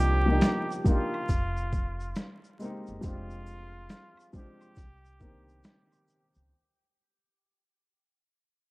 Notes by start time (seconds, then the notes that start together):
Already playing: C2 F3 A#3 D4 D#4 G4
0.00 shaker
0.26 F3 A#3 D4
0.30 D#4 G4
0.41 snare, closed hi-hat, shaker, maracas
0.71 shaker
0.84 F3 A#3 D4 F4, kick, shaker, maracas
0.89 D#4 G4
1.14 high woodblock
1.29 F1, kick, closed hi-hat, maracas, shaker
1.57 shaker
1.73 kick, maracas, shaker
2.00 shaker
2.16 snare, closed hi-hat, shaker, maracas
2.44 shaker
2.59 G#3 A#3 C4, maracas, shaker
2.63 D#4 G4
2.87 F#1, shaker
3.01 F1 F3 G#3 C4 F4, kick, closed hi-hat, maracas, shaker
3.05 D4 G4
3.30 shaker
3.46 maracas, shaker
3.89 snare, closed hi-hat, shaker, maracas
4.17 high woodblock, shaker
4.33 F3 G#3 C4 G4, kick, maracas, shaker
4.37 D4 G4
4.61 high woodblock, shaker
4.76 C2, kick, closed hi-hat, maracas, shaker
5.05 shaker
5.19 D#3 A#3 C4, kick, maracas, shaker
5.24 D4 G4
5.49 shaker
5.64 snare, closed hi-hat, maracas, shaker
5.92 high woodblock, shaker
6.08 maracas, shaker
6.34 C#2, shaker